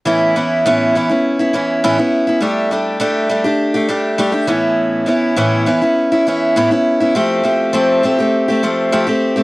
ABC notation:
X:1
M:4/4
L:1/16
Q:1/4=102
K:Amix
V:1 name="Steel-string acoustic guitar"
[A,,E,B,CE]2 [E,B,CE]2 [A,,E,B,CE]2 [E,B,CE] [B,CE]2 [B,CE] [E,B,CE]2 [A,,E,B,CE] [B,CE]2 [B,CE] | [G,A,DG]2 [G,A,DG]2 [G,A,DG]2 [G,A,DG] [A,DG]2 [A,DG] [G,A,DG]2 [G,A,DG] [A,DG] [A,,E,B,CE]2- | [A,,E,B,CE]2 [E,B,CE]2 [A,,E,B,CE]2 [E,B,CE] [B,CE]2 [B,CE] [E,B,CE]2 [A,,E,B,CE] [B,CE]2 [B,CE] | [=F,A,=CG]2 [F,A,CG]2 [F,A,CG]2 [F,A,CG] [A,CG]2 [A,CG] [F,A,CG]2 [F,A,CG] [A,CG]2 [A,CG] |]